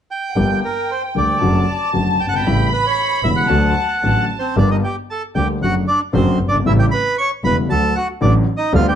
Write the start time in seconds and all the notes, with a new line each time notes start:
0.11 G5
0.29 F#5
0.36 G1 G2 D3 G3 A#3 G4 G5
0.65 A#4
0.91 C5
1.15 D2 D3 G3 A#3 G4 D5
1.41 F#1 F#2 D3 F#3 A3 F#4 A5
1.93 F#1 F#2 D3 F#3 A3 F#4
2.20 G1 G5
2.26 F#1 F#5
2.33 G1 G5
2.40 G#1
2.45 A1 A2 C#3 G3 A3 E4 B5
2.73 B4
2.86 C#5
3.23 E1 E2 C#3 G3 A3 E4 E5
3.36 F#5
3.49 D2 D3 F#3 A3 F#4 A5
4.02 A1 A2 D3 F#3 A3 F#4 A5
4.39 C4 C5
4.56 G1 G2 D3 G3 A#3 D4 G4 D5
4.71 D#4 D#5
4.84 G4 G5
5.10 A4 A5
5.35 D2 D3 G3 A#3 G4 G5
5.61 F#1 F#2 D3 F#3 A3 F#4 F#5
5.88 D4 D5
6.13 F#1 F#2 D3 F#3 A3 C4 F#4 C5
6.40 G1
6.47 F#1 D4 D5
6.53 G1
6.59 G#1
6.66 A1 A2 C#3 G3 A3 E4 E5
6.79 G4 G5
6.91 B4 B5
7.18 C#5 C#6
7.43 E1 E2 C#3 G3 A3 E4 B4 B5
7.69 D2 D3 F#3 A3 F#4 A4 A5
7.95 F#4 F#5
8.21 A1 A2 D3 F#3 A3 D4 F#4 D5
8.57 D#4 D#5
8.73 D2 D3 G3 B3 F4 G4 F5
8.88 G4 G5